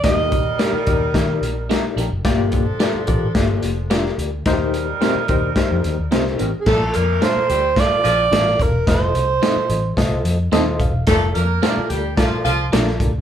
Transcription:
<<
  \new Staff \with { instrumentName = "Alto saxophone" } { \time 4/4 \key bes \major \tempo 4 = 109 ees''4 bes'2~ bes'8 r8 | r1 | r2. r8. r32 aes'32 | a'8 bes'8 c''4 d''4. bes'8 |
c''2 r2 | r1 | }
  \new Staff \with { instrumentName = "Reed electric piano" } { \time 4/4 \key bes \major <ees' ges' g' bes' ees''>8 r8 <ees' g' bes' d''>8 <ees' g' bes' d''>8 <ees' g' bes' d''>8 r8 <ees' g' bes' d''>8 r8 | <bes f' g' d''>8 r8 <f' g' bes' d''>8 <f' g' bes' d''>8 <bes f' g' d''>8 r8 <f' g' bes' d''>8 r8 | <ees' ges' g' bes' c''>8 r8 <ees' g' bes' c''>8 <ees' g' bes' c''>8 <ees' g' bes' c''>8 r8 <ees' g' bes' c''>8 r8 | <f' a' bes' des'' d''>8 r8 <f' a' bes' des'' d''>8 r8 <f' a' bes' d''>8 r8 <f' a' bes' ees'' f''>8 r8 |
<f' aes' a' c'' ees''>8 r8 <f' a' c'' ees''>8 r8 <f' a' c'' ees''>8 r8 <f' a' c'' ees'' c'''>8 f''8 | <f' a' bes' d''>8 r8 <f' a' bes' c'' d''>8 r8 <f' a' bes' d''>8 r8 <f' a' bes' d''>8 r8 | }
  \new Staff \with { instrumentName = "Reed electric piano" } { \clef bass \time 4/4 \key bes \major ees4. r2 r8 | g,4. r2 r8 | ees4. r2 r8 | bes,4. r2 r8 |
r1 | r1 | }
  \new Staff \with { instrumentName = "Clean electric guitar" } { \time 4/4 \key bes \major r4 <d' g' bes'>8 r4. <d' g' bes'>8 <d' g' bes'>8 | r4 <d' f' bes'>8 r4. <d' f' bes'>8 r8 | r4 <c' g' bes'>8 r4. <c' g' bes'>8 <c' g' bes'>8 | r4 <d' f' a'>8 r4. <d' f' a'>8 r8 |
r4 <c' ees' a'>8 r4. <c' ees' a'>8 r8 | r4 <d' f' a'>8 r4. <d' f' a'>8 r8 | }
  \new Staff \with { instrumentName = "Saxophone section" } { \time 4/4 \key bes \major <g ees' bes'>2.~ <g ees' bes'>8 r8 | <f d' a'>2.~ <f d' a'>8 r8 | <g ees' bes'>2.~ <g ees' bes'>8 r8 | <a a'>8 <bes bes'>4 <g g'>8 <f f'>8 <f f'>8 r4 |
r1 | <a a'>8 <bes bes'>4 <g g'>8 <f f'>8 <f f'>8 r4 | }
  \new Staff \with { instrumentName = "Fingered electric bass" } { \clef bass \time 4/4 \key bes \major ees,4 r8 ees,8 ees8 bes,,8. r16 bes,,16 ges,,16 | g,,4 r8 a,,8 g,,8 f,,4 d,8 | ees,4 r8 ees,8 r16 f,16 ees,16 ees,16 c,8 a,,16 r16 | bes,,8 f,8 r8 d,8 r8 bes,,8 a,,8 e,,8 |
f,,8 c,8 r8 a,,8 c,8 f,8 ees,8 e,,8 | f,,8 f,8 r8 d,8 r8 c,8 bes,,8 d,8 | }
  \new DrumStaff \with { instrumentName = "Drums" } \drummode { \time 4/4 <hh bd sn>8 <hh bd>8 <hh sn>8 <hh bd>8 <hh bd sn>8 hh8 <hh sn>8 hh8 | <hh bd sn>8 <hh bd>8 <hh sn>8 <hh bd>8 <hh bd sn>8 hh8 <hh sn>16 sn16 hh8 | <hh bd sn>8 hh8 <hh sn>8 <hh bd>8 <hh bd sn>8 hh8 <hh sn>16 sn16 hh8 | <cymc bd sn>8 hh8 <hh sn>8 hh8 <hh bd sn>8 hh8 <hh sn>16 sn16 <hh bd>8 |
<hh bd sn>8 hh8 <hh sn>8 hh8 <hh bd sn>8 hh8 <hh sn>8 <hh bd>8 | <hh bd sn>8 hh8 <hh sn>8 hh8 <hh bd sn>8 hh8 <hh sn>16 sn16 <hh bd>8 | }
>>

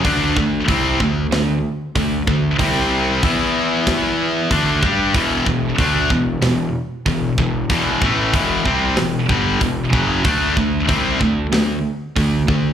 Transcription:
<<
  \new Staff \with { instrumentName = "Distorted electric guitar" } { \clef bass \time 4/4 \key e \minor \tempo 4 = 94 <d a d'>8 <d a>8 <c g c'>8 <d a>8 <d a>8 r8 <d a>8 <d a>8 | <c g c'>4 <e b e'>2 <d a d'>8 <g d' g'>8 | <e, b, e>8 <e, b,>8 <d a d'>8 <e, b,>8 <e, b,>8 r8 <e, b,>8 <e, b,>8 | <e, b, e>8 <a, e a>8 <e, b, e>8 <c g c'>8 <e, b,>8 <g, d g>8 <e, b,>8 <fis, cis fis>8 |
<d a d'>8 <d a>8 <c g c'>8 <d a>8 <d a>8 r8 <d a>8 <d a>8 | }
  \new Staff \with { instrumentName = "Distorted electric guitar" } { \clef bass \time 4/4 \key e \minor <d a d'>8 <d a>8 <c g c'>8 <d a>8 <d a>8 r8 <d a>8 <d a>8 | <c g c'>4 <e b e'>2 <d a d'>8 <g d' g'>8 | <e, b, e>8 <e, b,>8 <d a d'>8 <e, b,>8 <e, b,>8 r8 <e, b,>8 <e, b,>8 | <e, b, e>8 <a, e a>8 <e, b, e>8 <c g c'>8 <e, b,>8 <g, d g>8 <e, b,>8 <fis, cis fis>8 |
<d a d'>8 <d a>8 <c g c'>8 <d a>8 <d a>8 r8 <d a>8 <d a>8 | }
  \new Staff \with { instrumentName = "Picked electric bass" } { \clef bass \time 4/4 \key e \minor d,8 d,8 c,8 d,8 d,8 r8 d,8 d,8 | c,4 e,2 d,8 g,8 | e,,8 e,,8 d,8 e,,8 e,,8 r8 e,,8 e,,8 | e,,8 a,,8 e,,8 c,8 e,,8 g,,8 e,,8 fis,,8 |
d,8 d,8 c,8 d,8 d,8 r8 d,8 d,8 | }
  \new DrumStaff \with { instrumentName = "Drums" } \drummode { \time 4/4 <hho bd>8 bd8 <hho bd>8 bd8 <hho sn>4 <hho bd>8 bd8 | <hho bd>4 <hho bd>4 <hho bd sn>4 <hho bd>8 bd8 | <hho bd>8 bd8 <hho bd>8 bd8 <hho sn>4 <hho bd>8 bd8 | <hho bd>8 bd8 <hho bd>8 bd8 <hho sn>8 bd8 <hho bd>8 bd8 |
<hho bd>8 bd8 <hho bd>8 bd8 <hho sn>4 <hho bd>8 bd8 | }
>>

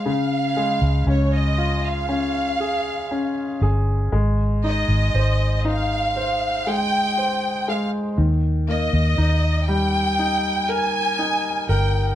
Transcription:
<<
  \new Staff \with { instrumentName = "Violin section" } { \time 4/4 \key aes \major \tempo 4 = 59 f''4 des''16 ees''8 f''4.~ f''16 r8 | r8 ees''4 f''4 g''4 f''8 | r8 ees''4 g''4 aes''4 g''8 | }
  \new Staff \with { instrumentName = "Grand piano" } { \time 4/4 \key aes \major des8 aes8 des'8 f'8 des'8 aes'8 des'8 aes'8 | aes8 ees'8 c''8 ees'8 c''8 aes8 c''8 aes8 | ees8 bes8 ees'8 g8 ees'8 bes'8 ees'8 bes'8 | }
  \new Staff \with { instrumentName = "Fingered electric bass" } { \clef bass \time 4/4 \key aes \major des,8. des,16 des,2~ des,8 g,,8 | aes,,8. aes,,16 aes,,2. | ees,8. ees,16 ees,2~ ees,8 g,,8 | }
>>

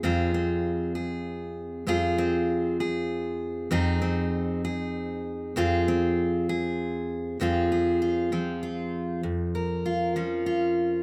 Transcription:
\new Staff \with { instrumentName = "Steel-string acoustic guitar" } { \time 6/8 \key f \minor \tempo 4. = 65 << { <c' f' aes'>8 c'4 aes'4. | <c' f' aes'>8 c'4 aes'4. | <c' ees' aes'>8 c'4 aes'4. | <c' f' aes'>8 c'4 aes'4. |
<f c' f' aes'>8 aes'8 f'8 c'8 f'4 | r8 bes'8 f'8 des'8 f'4 | } \\ { f,2. | f,2. | f,2. | f,2. |
f,4. f4. | f,4. f4. | } >> }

